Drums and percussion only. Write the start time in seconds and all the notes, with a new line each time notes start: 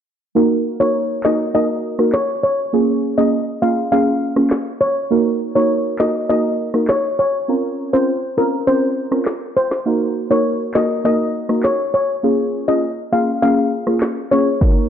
1.24 snare, clap
1.99 cross-stick
2.13 snare, clap
4.36 cross-stick
4.50 snare, clap
5.99 snare, clap
6.74 cross-stick
6.88 snare, clap
9.12 cross-stick
9.26 snare, clap
9.71 snare
10.74 snare, clap
11.49 cross-stick
11.63 snare, clap
13.87 cross-stick
14.01 snare, clap
14.61 kick